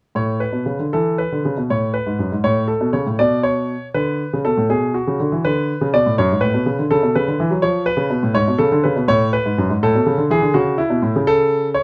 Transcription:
0.15 0.43 A2 medium
0.15 0.41 C#5 medium
0.40 0.84 B4 medium
0.53 0.65 B2 medium
0.66 0.78 C#3 medium
0.79 0.92 D3 medium
0.93 1.20 E3 medium
0.93 1.18 A4 medium
1.18 1.60 B4 medium
1.32 1.43 D3 medium
1.45 1.56 C#3 medium
1.57 1.68 B2 medium
1.70 1.96 A2 medium
1.70 1.90 C#5 medium
1.94 2.36 B4 medium
2.07 2.18 G#2 medium
2.19 2.30 F#2 medium
2.32 2.43 G#2 medium
2.44 2.71 A2 medium
2.44 2.65 C#5 medium
2.68 2.89 A4 medium
2.81 2.93 B2 medium
2.93 3.05 C#3 medium
2.93 3.15 C#5 medium
3.06 3.18 A2 medium
3.19 3.73 B2 medium
3.19 3.40 D5 medium
3.43 3.86 C#5 medium
3.94 4.21 D3 medium
3.94 4.37 B4 medium
4.33 4.44 C#3 medium
4.45 4.57 B2 medium
4.45 4.66 A4 medium
4.57 4.69 A2 medium
4.69 4.96 B2 medium
4.69 4.94 G#4 medium
4.94 5.44 F#4 medium
5.07 5.19 C#3 medium
5.20 5.31 D3 medium
5.32 5.43 E3 medium
5.45 5.71 D3 medium
5.45 5.86 B4 medium
5.81 5.93 C#3 medium
5.93 6.05 B2 medium
5.93 6.14 D5 medium
6.06 6.17 A2 medium
6.18 6.29 F#2 medium
6.18 6.42 C#5 loud
6.32 6.42 G#2 medium
6.41 6.53 A2 medium
6.41 6.83 B4 medium
6.54 6.65 B2 medium
6.66 6.78 C#3 medium
6.79 6.90 D3 medium
6.91 7.02 C#3 medium
6.91 7.15 A4 medium
7.03 7.14 B2 medium
7.15 7.27 C#3 medium
7.15 7.56 B4 medium
7.28 7.39 D3 medium
7.40 7.51 E3 medium
7.50 7.62 F#3 medium
7.62 7.89 F3 medium
7.62 7.83 C#5 medium
7.86 8.35 B4 medium
7.97 8.09 C#3 medium
8.10 8.22 B2 medium
8.23 8.35 A2 medium
8.34 8.47 G#2 medium
8.34 8.56 C#5 loud
8.48 8.59 B2 medium
8.58 8.71 C#3 medium
8.58 8.83 A4 medium
8.72 8.83 D3 medium
8.84 8.96 C#3 medium
8.84 9.08 B4 medium
8.96 9.08 B2 medium
9.08 9.35 A2 medium
9.08 9.29 C#5 loud
9.33 9.74 B4 medium
9.46 9.57 G#2 medium
9.58 9.69 F#2 medium
9.70 9.81 G#2 medium
9.83 9.93 A2 medium
9.83 10.22 A4 loud
9.95 10.05 B2 medium
10.06 10.17 C#3 medium
10.18 10.28 D3 medium
10.30 10.41 E3 medium
10.30 10.54 G#4 medium
10.42 10.53 D3 medium
10.54 10.80 C#3 medium
10.54 10.78 F#4 medium
10.78 11.19 E4 medium
10.90 11.01 B2 medium
11.02 11.13 A2 medium
11.16 11.75 C#3 medium
11.27 11.67 A4 loud
11.74 11.83 C#5 loud

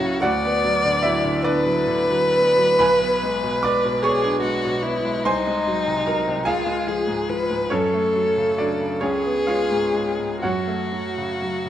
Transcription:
0.00 0.19 C#2 medium
0.00 0.24 C#3 soft
0.00 0.24 F#3 soft
0.00 0.24 A#3 soft
0.00 0.19 C#4 medium
0.00 0.24 E4 medium
0.00 0.22 F#4 medium
0.00 0.25 C#5 medium
0.00 0.24 E5 medium
0.20 2.76 D2 medium
0.20 1.00 F#4 medium
0.20 1.44 D5 medium
0.20 0.99 D5 medium
0.20 1.03 F#5 medium
0.45 0.76 B3 soft
0.64 0.96 F#3 soft
0.85 1.16 D3 soft
1.03 1.35 F#3 soft
1.03 1.41 E4 medium
1.03 1.43 E5 medium
1.24 1.56 D3 soft
1.42 1.78 B3 soft
1.42 2.77 D4 medium
1.42 4.03 B4 medium
1.42 2.76 B4 medium
1.42 2.80 D5 medium
1.65 2.01 F#3 soft
1.87 2.24 D3 soft
2.10 2.48 F#3 soft
2.35 2.71 B3 soft
2.57 2.79 F#3 soft
2.79 5.21 B1 medium
2.79 3.59 B4 medium
2.79 3.59 G#5 medium
2.79 3.62 B5 loud
3.02 3.35 B3 soft
3.23 3.55 G#3 soft
3.43 3.75 B2 soft
3.63 3.95 G#3 soft
3.63 4.01 D5 medium
3.63 4.03 D6 medium
3.85 4.16 B2 soft
4.02 4.35 B3 soft
4.02 4.41 G#4 medium
4.02 5.22 C#5 medium
4.02 5.25 C#6 medium
4.24 4.55 D4 soft
4.41 4.75 G#3 soft
4.41 4.84 F#4 medium
4.65 4.97 B2 soft
4.83 5.17 B3 medium
4.83 5.26 E4 medium
5.05 5.25 G#3 soft
5.24 6.43 C2 medium
5.24 6.45 D#4 medium
5.24 6.02 C5 medium
5.24 6.02 G#5 medium
5.24 6.06 C6 loud
5.47 5.78 G#3 soft
5.67 5.98 F#3 soft
5.87 6.18 C3 soft
6.06 6.38 F#3 soft
6.06 6.44 A#4 medium
6.06 6.46 A#5 medium
6.28 6.47 C3 soft
6.45 7.67 C#2 medium
6.45 6.89 F4 medium
6.45 7.67 G#4 medium
6.45 7.67 F5 medium
6.45 7.70 G#5 medium
6.67 6.99 G#3 soft
6.87 7.20 F3 soft
6.87 7.30 G#4 medium
7.07 7.41 G#2 soft
7.29 7.63 F3 soft
7.29 7.74 B4 medium
7.50 7.71 G#2 soft
7.70 8.98 F#2 medium
7.70 8.54 C#4 medium
7.70 8.54 A4 medium
7.70 9.02 A4 medium
7.70 8.57 C#5 medium
7.94 8.28 A3 soft
8.16 8.49 F#3 soft
8.37 8.71 C#3 soft
8.58 8.93 F#3 soft
8.58 8.99 D4 medium
8.58 9.02 D5 medium
8.80 9.02 C#3 soft
9.01 10.38 C#2 soft
9.01 9.44 C#4 medium
9.01 10.41 G#4 medium
9.01 9.44 G#4 soft
9.01 9.46 C#5 medium
9.25 9.61 B3 soft
9.47 9.84 G#3 soft
9.47 10.38 F4 medium
9.47 10.39 C#5 medium
9.47 10.42 F5 medium
9.70 10.08 G#2 soft
9.94 10.32 G#3 soft
10.18 10.42 G#2 soft
10.42 11.69 F#2 soft
10.42 11.69 F#4 medium
10.42 11.69 F#4 soft
10.42 11.69 C#5 soft
10.42 11.69 F#5 medium
10.68 11.06 A3 soft
10.92 11.31 F#3 soft
11.17 11.55 C#3 soft
11.42 11.69 F#3 soft
11.66 11.69 C#3 soft

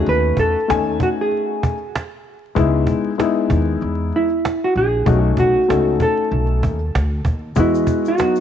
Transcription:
0.00 0.55 A3 medium
0.00 0.56 C#4 medium
0.00 0.56 D#4 medium
0.00 0.56 F#4 medium
0.06 0.34 D#2 medium
0.06 0.40 B4 loud
0.06 cajon slap soft
0.37 0.54 E2 medium
0.37 1.02 A4 loud
0.37 cajon bass medium
0.68 0.97 D#2 medium
0.68 1.74 A3 medium
0.68 1.75 C#4 medium
0.68 1.75 D#4 medium
0.68 1.75 G#5 medium
0.68 cajon slap loud
1.00 1.08 F#4 medium
1.00 cajon bass medium
1.21 2.10 G#4 medium
1.31 cajon slap soft
1.63 cajon bass loud
1.95 cajon slap loud
2.55 2.84 C#2 medium
2.55 3.10 G#3 medium
2.55 3.10 B3 medium
2.55 3.10 D#4 medium
2.55 3.11 E4 loud
2.55 cajon bass loud
2.87 cajon bass medium
3.18 4.24 G#3 medium
3.18 4.24 B3 medium
3.18 4.25 D#4 medium
3.18 4.25 E4 medium
3.18 cajon slap loud
3.50 3.78 D#2 loud
3.50 cajon bass medium
3.81 4.10 E2 medium
3.81 cajon slap medium
4.13 4.65 E4 medium
4.13 cajon slap soft
4.45 cajon slap loud
4.64 4.77 F#4 medium
4.76 5.03 A#1 medium
4.76 5.21 G#4 medium
5.06 5.35 B1 loud
5.06 5.60 A3 medium
5.06 5.60 C#4 medium
5.06 5.61 D#4 medium
5.06 5.61 F#4 medium
5.06 cajon bass loud
5.21 5.35 F#4 medium
5.21 cajon slap soft
5.37 5.54 B1 medium
5.37 5.97 F#4 medium
5.37 cajon bass medium
5.68 5.97 C#2 medium
5.68 6.74 A3 medium
5.68 6.75 C#4 medium
5.68 6.75 D#4 medium
5.68 6.75 A4 medium
5.68 cajon slap loud
6.00 7.22 A4 medium
6.00 cajon bass medium
6.31 6.60 B1 medium
6.31 cajon slap soft
6.63 6.91 D#2 medium
6.63 cajon bass medium
6.95 7.23 D2 medium
6.95 cajon slap loud
7.25 7.53 D#2 medium
7.25 cajon bass medium
7.56 7.85 E2 medium
7.56 8.10 G#3 medium
7.56 8.10 B3 medium
7.56 8.09 E4 medium
7.56 8.11 F#4 medium
7.56 8.11 D#5 medium
7.56 cajon bass loud
7.56 maracas medium
7.75 maracas soft
7.87 cajon bass medium
7.87 maracas soft
8.05 8.40 F#4 medium
8.05 maracas soft
8.18 8.40 F#3 medium
8.18 8.40 B3 medium
8.18 8.40 D#4 medium
8.18 8.40 F#4 medium
8.18 cajon slap loud
8.18 maracas medium
8.36 maracas soft

